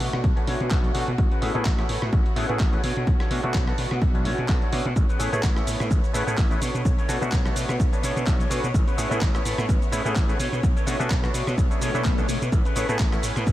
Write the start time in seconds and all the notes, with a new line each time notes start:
Already playing: A3 B3 D4 F#4 C#5 F#5
0.00 B2, muted clean electric guitar stroke, open hi-hat
0.13 B2, cross-stick, closed hi-hat
0.24 B1, kick, closed hi-hat
0.36 A3 B3 C#4 D4 G#5, closed hi-hat
0.47 B2 D4 A4 C#5, open hi-hat
0.60 B2, closed hi-hat
0.71 B1 A3 B3 C#4 D4 F#4, kick, clap, closed hi-hat
0.84 D4 A4 C#5, closed hi-hat
0.94 B2 A3 B3 C#4 D4 F#4, open hi-hat
1.08 B2, closed hi-hat
1.18 A1, kick, closed hi-hat
1.31 C#4 G#4 B4, closed hi-hat
1.42 A2 A3 B3 C#4 E4 G#4, open hi-hat
1.54 A2 A3 B3 C#4 E4 G#4, closed hi-hat
1.65 A1, kick, clap, closed hi-hat
1.78 A3 B3 C#4 E4, muted clean electric guitar stroke, cross-stick, closed hi-hat
1.89 A2, muted clean electric guitar stroke, open hi-hat
2.02 A2, cross-stick
2.13 A1, kick, closed hi-hat
2.26 closed hi-hat
2.36 A2 A3 B3 C#4 E4 G#4 B4, open hi-hat
2.49 A2 A3 B3 C#4 E4 G#4, closed hi-hat
2.59 A1, kick, clap, closed hi-hat
2.73 A3 B3 C#4 E4 G#4 B4, closed hi-hat
2.83 B2 D4 A4 C#5, open hi-hat
2.97 B2, closed hi-hat
3.07 B1, kick, closed hi-hat
3.20 D4 A4 C#5, cross-stick, closed hi-hat
3.31 B2 A3 B3 C#4 D4 F#4, open hi-hat
3.43 B2 A3 B3 C#4 D4 F#4
3.54 B1, kick, clap, closed hi-hat
3.67 A3 B3 D4 F#4 C#5, muted clean electric guitar stroke, cross-stick, closed hi-hat
3.78 B2, muted clean electric guitar stroke, open hi-hat
3.91 B2, cross-stick
4.02 B1, kick, closed hi-hat
4.14 A3 B3 C#4 D4 G#5, closed hi-hat
4.25 B2 D4 A4 C#5, open hi-hat
4.38 B2, closed hi-hat
4.48 B1 A3 B3 C#4 D4 F#4, kick, clap, closed hi-hat
4.62 D4 A4 C#5, closed hi-hat
4.72 B2 A3 B3 C#4 D4 F#4, open hi-hat
4.86 B2
4.96 A1 B3 C#5, kick, closed hi-hat, shaker
5.09 C#4 G#4 B4, closed hi-hat, shaker
5.19 A2 A3 B3 C#4 E4 G#4, open hi-hat, shaker
5.32 A2 A3 B3 C#4 E4 G#4, closed hi-hat, shaker
5.43 A1, kick, clap, closed hi-hat, shaker
5.55 A3 B3 C#4 E4, muted clean electric guitar stroke, cross-stick, closed hi-hat, shaker
5.67 A2, muted clean electric guitar stroke, open hi-hat, shaker
5.80 A2, cross-stick, closed hi-hat, shaker
5.91 A1, kick, closed hi-hat, shaker
6.04 closed hi-hat, shaker
6.14 A2 A3 B3 C#4 E4 G#4 B4, open hi-hat, shaker
6.27 A2 A3 B3 C#4 E4 G#4, closed hi-hat, shaker
6.38 A1, kick, clap, closed hi-hat, shaker
6.50 A3 B3 C#4 E4 G#4 B4, closed hi-hat, shaker
6.61 B2 D4 A4 C#5, open hi-hat, shaker
6.75 B2, closed hi-hat, shaker
6.85 B1, kick, closed hi-hat, shaker
6.98 D4 A4 C#5, closed hi-hat, shaker
7.08 B2 A3 B3 C#4 D4 F#4, open hi-hat, shaker
7.21 B2 A3 B3 C#4 D4 F#4, closed hi-hat, shaker
7.32 B1, kick, clap, closed hi-hat, shaker
7.45 A3 B3 D4 F#4 C#5, muted clean electric guitar stroke, cross-stick, closed hi-hat, shaker
7.56 B2, muted clean electric guitar stroke, open hi-hat, shaker
7.69 B2, cross-stick, shaker
7.80 B1, kick, closed hi-hat, shaker
7.92 A3 B3 C#4 D4 G#5, closed hi-hat, shaker
8.03 B2 D4 A4 C#5, open hi-hat, shaker
8.16 B2, closed hi-hat, shaker
8.27 B1 A3 B3 C#4 D4 F#4, kick, clap, closed hi-hat, shaker
8.40 D4 A4 C#5, closed hi-hat, shaker
8.50 B2 A3 B3 C#4 D4 F#4, open hi-hat, shaker
8.64 B2, closed hi-hat, shaker
8.74 A1, kick, closed hi-hat, shaker
8.87 C#4 G#4 B4, closed hi-hat, shaker
8.97 A2 A3 B3 C#4 E4 G#4, open hi-hat, shaker
9.11 A2 A3 B3 C#4 E4 G#4, closed hi-hat, shaker
9.21 A1, kick, clap, closed hi-hat, shaker
9.34 A3 B3 C#4 E4, muted clean electric guitar stroke, cross-stick, closed hi-hat, shaker
9.45 A2, muted clean electric guitar stroke, open hi-hat, shaker
9.58 A2, cross-stick, shaker
9.69 A1, kick, closed hi-hat, shaker
9.82 closed hi-hat, shaker
9.92 A2 A3 B3 C#4 E4 G#4 B4, open hi-hat, shaker
10.05 A2 A3 B3 C#4 E4 G#4, closed hi-hat, shaker
10.16 A1, kick, clap, closed hi-hat, shaker
10.29 A3 B3 C#4 E4 G#4 B4, closed hi-hat, shaker
10.39 B2 D4 A4 C#5, open hi-hat, shaker
10.53 B2, shaker
10.63 B1, kick, closed hi-hat, shaker
10.76 D4 A4 C#5, closed hi-hat, shaker
10.86 B2 A3 B3 C#4 D4 F#4, open hi-hat, shaker
10.99 B2 A3 B3 C#4 D4 F#4, closed hi-hat, shaker
11.10 B1, kick, clap, closed hi-hat, shaker
11.23 A3 B3 D4 F#4 C#5, muted clean electric guitar stroke, cross-stick, closed hi-hat, shaker
11.34 B2, muted clean electric guitar stroke, open hi-hat, shaker
11.47 B2, cross-stick, shaker
11.58 B1, kick, closed hi-hat, swell, shaker
11.70 A3 B3 C#4 D4 G#4, closed hi-hat, shaker
11.81 B2 D4 A4 C#5, open hi-hat, shaker
11.94 B2 A3 B3 C#4 D4 E4, closed hi-hat, shaker
12.04 B1, kick, clap, closed hi-hat, shaker
12.18 A3 B3 C#4 D4 A4 C#5, closed hi-hat, shaker
12.29 B2, open hi-hat, shaker
12.42 B2, closed hi-hat, shaker
12.52 A1 B3 B4, kick, closed hi-hat, shaker
12.65 C#4 G#4 B4, closed hi-hat, shaker
12.76 A2 A3 B3 C#4 E4 G#4, open hi-hat, shaker
12.89 A2 A3 B3 C#4 E4 G#4, shaker
12.99 A1, kick, clap, closed hi-hat, shaker
13.12 A3 B3 C#4 E4, muted clean electric guitar stroke, cross-stick, closed hi-hat, shaker
13.23 A2, muted clean electric guitar stroke, open hi-hat, shaker
13.36 A2, cross-stick, shaker
13.47 A1, kick, closed hi-hat, shaker